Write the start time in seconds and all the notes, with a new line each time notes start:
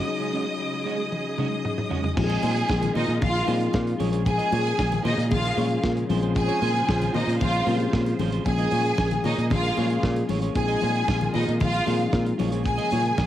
Already playing: C#3 F#3 G#3 C#4 D#4 F4 F#4 D#5 D#6
0.07 F#3 C#4 D#4 G#4, muted clean electric guitar stroke
0.20 G#3 C#4 G#4
0.33 G#3 C#4 F#4
0.46 muted clean electric guitar stroke
0.60 muted clean electric guitar stroke
0.73 muted clean electric guitar stroke
0.85 G#3 C#4 F#4
0.98 muted clean electric guitar stroke
1.12 high tom
1.25 muted clean electric guitar stroke
1.38 F#3 G#3 C#4 D#4 F#4 G#4, mid tom
1.50 muted clean electric guitar stroke
1.65 mid tom
1.77 muted clean electric guitar stroke, mid tom
1.89 G#3 C#4 F#4, floor tom
2.03 muted clean electric guitar stroke, floor tom
2.16 A#1 D#3 F3 G#3 C4 D#4 F4 G4 G#4 G#5, muted clean electric guitar stroke, kick, crash, muted conga
2.24 G#4
2.29 D#4 G#4 D#5, closed hi-hat, muted conga
2.42 A#2 D#4 G#4 C5, open hi-hat, high conga
2.55 muted clean electric guitar stroke, closed hi-hat
2.68 A#1, muted clean electric guitar stroke, kick, snare, muted conga
2.81 muted clean electric guitar stroke, closed hi-hat, muted conga, low conga
2.94 A#2 D#4 G#4 C5 D#5, open hi-hat, low conga
3.08 A#2, muted clean electric guitar stroke, closed hi-hat
3.22 A#1 F4 F5, kick, closed hi-hat, muted conga, low conga
3.34 muted clean electric guitar stroke, closed hi-hat
3.46 A#2 F3 G#3 C4 D#4 G#4 C5, open hi-hat, high conga
3.60 muted clean electric guitar stroke, closed hi-hat
3.73 A#2, muted clean electric guitar stroke, kick, snare, muted conga
3.86 muted clean electric guitar stroke, closed hi-hat
3.98 A#1 C#3 F3 G#3 A#3 C#4 F4 G#4 C#5, open hi-hat, high conga
4.12 F4 G#4 C#5, closed hi-hat
4.25 G#4 G#5, muted clean electric guitar stroke, kick, closed hi-hat, muted conga
4.38 F4 G#4 D#5, closed hi-hat, muted conga
4.51 A#2 F4 G#4 C#5, open hi-hat, high conga
4.64 muted clean electric guitar stroke, closed hi-hat
4.77 A#1, muted clean electric guitar stroke, kick, snare
4.91 muted clean electric guitar stroke, closed hi-hat, muted conga, low conga
5.03 A#2 D#4 F4 G#4 C#5 D#5, open hi-hat, low conga
5.17 A#2, muted clean electric guitar stroke, closed hi-hat
5.31 A#1 F4 F5, kick, closed hi-hat, muted conga, low conga
5.44 muted clean electric guitar stroke, closed hi-hat, muted conga
5.56 A#2 F3 G#3 A#3 C#4 F4 G#4 C#5, open hi-hat, high conga
5.70 muted clean electric guitar stroke, closed hi-hat
5.83 A#2, muted clean electric guitar stroke, kick, snare, muted conga
5.96 muted clean electric guitar stroke, closed hi-hat
6.09 A#1 F3 G#3 C4 C#4 F4 G#4 C5, open hi-hat, high conga
6.22 F4 G#4 C5, closed hi-hat
6.35 G#4 G#5, muted clean electric guitar stroke, kick, closed hi-hat
6.48 F4 G#4 C#5, closed hi-hat, muted conga
6.61 A#2 F4 G#4 C5, open hi-hat, high conga
6.74 muted clean electric guitar stroke, closed hi-hat
6.87 A#1, muted clean electric guitar stroke, kick, snare
7.00 muted clean electric guitar stroke, closed hi-hat, low conga
7.13 A#2 D#4 F4 G#4 C5 D#5, open hi-hat, low conga
7.27 A#2, muted clean electric guitar stroke, closed hi-hat
7.40 A#1 F4 F5, kick, closed hi-hat, muted conga, low conga
7.53 muted clean electric guitar stroke, closed hi-hat, muted conga
7.66 A#2 F3 G#3 C4 C#4 F4 G4 G#4 C5, open hi-hat, high conga
7.74 G#4
7.79 muted clean electric guitar stroke, closed hi-hat
7.93 A#2, muted clean electric guitar stroke, kick, snare
8.06 muted clean electric guitar stroke, closed hi-hat, muted conga
8.19 A1 F4 G#4 C5, open hi-hat, high conga
8.32 F4 G#4 C5, closed hi-hat
8.45 A#1 F3 G#3 A#3 C#4 G#4 G#5, kick, closed hi-hat, muted conga
8.58 F4 G#4 D#5, closed hi-hat, muted conga
8.71 A#2 F4 G#4 C#5, open hi-hat, high conga
8.85 muted clean electric guitar stroke, closed hi-hat
8.98 A#1, muted clean electric guitar stroke, kick, snare, muted conga
9.11 muted clean electric guitar stroke, closed hi-hat, muted conga, low conga
9.24 A#2 D#4 F4 G#4 C#5 D#5, open hi-hat, low conga
9.37 A#2, muted clean electric guitar stroke, closed hi-hat
9.50 A#1 F4 F5, muted clean electric guitar stroke, kick, closed hi-hat, low conga
9.63 muted clean electric guitar stroke, closed hi-hat, muted conga
9.76 A#2 F3 G#3 A#3 C#4 F4 G#4 C#5, open hi-hat, high conga
9.89 F4 G#4 C#5, closed hi-hat
10.03 A#2, muted clean electric guitar stroke, kick, snare
10.16 muted clean electric guitar stroke, closed hi-hat, muted conga
10.28 A1 F4 G#4 C#5, open hi-hat, high conga
10.42 F4 G#4 C#5, closed hi-hat
10.55 A#1 D#3 F3 G#3 C4 D#4 F4 G#4 G#5, muted clean electric guitar stroke, kick, closed hi-hat, muted conga
10.68 D#4 G#4 D#5, closed hi-hat, muted conga
10.81 A#2 D#4 G#4 C5, open hi-hat, high conga
10.94 muted clean electric guitar stroke, closed hi-hat
11.07 A#1, muted clean electric guitar stroke, kick, snare, muted conga
11.20 muted clean electric guitar stroke, closed hi-hat, muted conga, low conga
11.33 A#2 D#4 G#4 C5 D#5, open hi-hat, low conga
11.47 A#2, muted clean electric guitar stroke, closed hi-hat
11.60 A#1 F4 F5, kick, closed hi-hat, muted conga, low conga
11.73 muted clean electric guitar stroke, closed hi-hat, muted conga
11.86 A#2 F3 G#3 C4 D#4 G#4 C5, open hi-hat, high conga
11.99 muted clean electric guitar stroke, closed hi-hat
12.13 A#2, muted clean electric guitar stroke, kick, snare, muted conga
12.25 muted clean electric guitar stroke, closed hi-hat, muted conga
12.38 A#1 C#3 F3 G#3 A#3 C#4 F4 G#4 C#5, open hi-hat, high conga
12.52 F4 G#4 C#5, closed hi-hat
12.64 G#4 G#5, muted clean electric guitar stroke, kick, closed hi-hat
12.78 F4 G#4 D#5, closed hi-hat, muted conga
12.91 A#2 F4 G#4 C#5, open hi-hat, high conga
13.04 muted clean electric guitar stroke, closed hi-hat
13.17 A#1, muted clean electric guitar stroke, kick, snare, muted conga